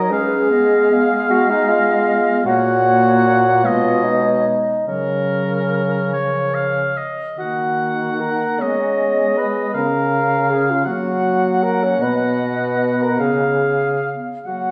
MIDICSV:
0, 0, Header, 1, 6, 480
1, 0, Start_track
1, 0, Tempo, 785340
1, 73, Time_signature, 6, 3, 24, 8
1, 2472, Tempo, 833333
1, 4392, Tempo, 801068
1, 5352, Tempo, 753769
1, 7272, Tempo, 794702
1, 7752, Tempo, 839161
1, 8852, End_track
2, 0, Start_track
2, 0, Title_t, "Oboe"
2, 0, Program_c, 0, 68
2, 0, Note_on_c, 0, 75, 65
2, 72, Note_off_c, 0, 75, 0
2, 76, Note_on_c, 0, 77, 63
2, 1475, Note_off_c, 0, 77, 0
2, 1509, Note_on_c, 0, 78, 66
2, 2238, Note_on_c, 0, 75, 60
2, 2247, Note_off_c, 0, 78, 0
2, 2786, Note_off_c, 0, 75, 0
2, 2949, Note_on_c, 0, 70, 47
2, 3645, Note_off_c, 0, 70, 0
2, 3674, Note_on_c, 0, 73, 54
2, 3912, Note_on_c, 0, 77, 59
2, 3920, Note_off_c, 0, 73, 0
2, 4159, Note_on_c, 0, 75, 46
2, 4167, Note_off_c, 0, 77, 0
2, 4395, Note_off_c, 0, 75, 0
2, 4403, Note_on_c, 0, 78, 50
2, 5133, Note_on_c, 0, 75, 49
2, 5142, Note_off_c, 0, 78, 0
2, 5832, Note_off_c, 0, 75, 0
2, 5836, Note_on_c, 0, 77, 53
2, 6545, Note_on_c, 0, 78, 58
2, 6554, Note_off_c, 0, 77, 0
2, 7985, Note_on_c, 0, 77, 46
2, 7994, Note_off_c, 0, 78, 0
2, 8535, Note_off_c, 0, 77, 0
2, 8709, Note_on_c, 0, 78, 38
2, 8852, Note_off_c, 0, 78, 0
2, 8852, End_track
3, 0, Start_track
3, 0, Title_t, "Flute"
3, 0, Program_c, 1, 73
3, 0, Note_on_c, 1, 73, 68
3, 65, Note_on_c, 1, 71, 61
3, 74, Note_off_c, 1, 73, 0
3, 306, Note_off_c, 1, 71, 0
3, 309, Note_on_c, 1, 75, 61
3, 570, Note_on_c, 1, 77, 62
3, 579, Note_off_c, 1, 75, 0
3, 798, Note_on_c, 1, 75, 70
3, 807, Note_off_c, 1, 77, 0
3, 1497, Note_off_c, 1, 75, 0
3, 1501, Note_on_c, 1, 73, 75
3, 2759, Note_off_c, 1, 73, 0
3, 2953, Note_on_c, 1, 70, 51
3, 4009, Note_off_c, 1, 70, 0
3, 5117, Note_on_c, 1, 75, 51
3, 5841, Note_on_c, 1, 77, 65
3, 5850, Note_off_c, 1, 75, 0
3, 6552, Note_off_c, 1, 77, 0
3, 6557, Note_on_c, 1, 78, 58
3, 7260, Note_off_c, 1, 78, 0
3, 7268, Note_on_c, 1, 75, 60
3, 7982, Note_on_c, 1, 77, 49
3, 7990, Note_off_c, 1, 75, 0
3, 8701, Note_on_c, 1, 78, 47
3, 8710, Note_off_c, 1, 77, 0
3, 8852, Note_off_c, 1, 78, 0
3, 8852, End_track
4, 0, Start_track
4, 0, Title_t, "Bassoon"
4, 0, Program_c, 2, 70
4, 0, Note_on_c, 2, 70, 68
4, 74, Note_off_c, 2, 70, 0
4, 78, Note_on_c, 2, 68, 74
4, 781, Note_off_c, 2, 68, 0
4, 796, Note_on_c, 2, 66, 84
4, 920, Note_on_c, 2, 63, 72
4, 929, Note_off_c, 2, 66, 0
4, 1031, Note_on_c, 2, 65, 80
4, 1041, Note_off_c, 2, 63, 0
4, 1500, Note_off_c, 2, 65, 0
4, 1504, Note_on_c, 2, 66, 87
4, 2227, Note_on_c, 2, 65, 77
4, 2236, Note_off_c, 2, 66, 0
4, 2468, Note_on_c, 2, 63, 64
4, 2477, Note_off_c, 2, 65, 0
4, 2946, Note_off_c, 2, 63, 0
4, 2949, Note_on_c, 2, 61, 52
4, 4129, Note_off_c, 2, 61, 0
4, 4395, Note_on_c, 2, 66, 53
4, 4884, Note_on_c, 2, 70, 63
4, 4893, Note_off_c, 2, 66, 0
4, 5121, Note_on_c, 2, 61, 75
4, 5130, Note_off_c, 2, 70, 0
4, 5606, Note_on_c, 2, 71, 64
4, 5616, Note_off_c, 2, 61, 0
4, 5838, Note_on_c, 2, 70, 64
4, 5848, Note_off_c, 2, 71, 0
4, 6321, Note_on_c, 2, 68, 67
4, 6331, Note_off_c, 2, 70, 0
4, 6450, Note_on_c, 2, 65, 62
4, 6459, Note_off_c, 2, 68, 0
4, 6556, Note_off_c, 2, 65, 0
4, 6560, Note_on_c, 2, 66, 65
4, 7040, Note_on_c, 2, 70, 69
4, 7050, Note_off_c, 2, 66, 0
4, 7171, Note_on_c, 2, 61, 73
4, 7181, Note_off_c, 2, 70, 0
4, 7289, Note_on_c, 2, 71, 66
4, 7298, Note_off_c, 2, 61, 0
4, 7881, Note_on_c, 2, 70, 58
4, 7890, Note_off_c, 2, 71, 0
4, 7993, Note_on_c, 2, 68, 60
4, 8001, Note_off_c, 2, 70, 0
4, 8539, Note_off_c, 2, 68, 0
4, 8712, Note_on_c, 2, 66, 46
4, 8852, Note_off_c, 2, 66, 0
4, 8852, End_track
5, 0, Start_track
5, 0, Title_t, "Clarinet"
5, 0, Program_c, 3, 71
5, 0, Note_on_c, 3, 63, 63
5, 71, Note_on_c, 3, 61, 59
5, 80, Note_off_c, 3, 63, 0
5, 313, Note_on_c, 3, 59, 62
5, 322, Note_off_c, 3, 61, 0
5, 555, Note_off_c, 3, 59, 0
5, 559, Note_on_c, 3, 59, 61
5, 790, Note_off_c, 3, 59, 0
5, 793, Note_on_c, 3, 59, 64
5, 1396, Note_off_c, 3, 59, 0
5, 1500, Note_on_c, 3, 58, 54
5, 2226, Note_on_c, 3, 56, 59
5, 2235, Note_off_c, 3, 58, 0
5, 2781, Note_off_c, 3, 56, 0
5, 2949, Note_on_c, 3, 54, 47
5, 3667, Note_on_c, 3, 53, 44
5, 3676, Note_off_c, 3, 54, 0
5, 4200, Note_off_c, 3, 53, 0
5, 4394, Note_on_c, 3, 58, 43
5, 5123, Note_on_c, 3, 59, 47
5, 5132, Note_off_c, 3, 58, 0
5, 5842, Note_off_c, 3, 59, 0
5, 5852, Note_on_c, 3, 61, 48
5, 6559, Note_on_c, 3, 58, 56
5, 6569, Note_off_c, 3, 61, 0
5, 7278, Note_on_c, 3, 59, 47
5, 7287, Note_off_c, 3, 58, 0
5, 7986, Note_off_c, 3, 59, 0
5, 7989, Note_on_c, 3, 59, 45
5, 8526, Note_off_c, 3, 59, 0
5, 8710, Note_on_c, 3, 58, 34
5, 8852, Note_off_c, 3, 58, 0
5, 8852, End_track
6, 0, Start_track
6, 0, Title_t, "French horn"
6, 0, Program_c, 4, 60
6, 0, Note_on_c, 4, 54, 70
6, 63, Note_on_c, 4, 56, 71
6, 72, Note_off_c, 4, 54, 0
6, 1493, Note_off_c, 4, 56, 0
6, 1500, Note_on_c, 4, 46, 70
6, 2227, Note_on_c, 4, 47, 67
6, 2236, Note_off_c, 4, 46, 0
6, 2781, Note_off_c, 4, 47, 0
6, 2945, Note_on_c, 4, 49, 57
6, 4176, Note_off_c, 4, 49, 0
6, 4393, Note_on_c, 4, 51, 49
6, 5093, Note_off_c, 4, 51, 0
6, 5122, Note_on_c, 4, 56, 53
6, 5827, Note_off_c, 4, 56, 0
6, 5842, Note_on_c, 4, 49, 57
6, 6539, Note_off_c, 4, 49, 0
6, 6553, Note_on_c, 4, 54, 58
6, 7258, Note_off_c, 4, 54, 0
6, 7270, Note_on_c, 4, 47, 59
6, 7983, Note_on_c, 4, 49, 52
6, 7992, Note_off_c, 4, 47, 0
6, 8534, Note_off_c, 4, 49, 0
6, 8710, Note_on_c, 4, 54, 41
6, 8852, Note_off_c, 4, 54, 0
6, 8852, End_track
0, 0, End_of_file